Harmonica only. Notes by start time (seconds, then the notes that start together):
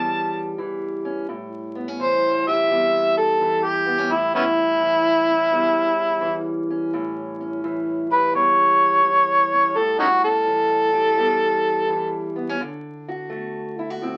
Already playing: A5
2.02 C5
2.47 E5
3.17 A4
3.63 G4
4.11 E4
4.35 B3 C#4 E4
8.12 B4
8.35 C#5
9.77 A4
9.99 C#4 D#4 F#4
10.24 A4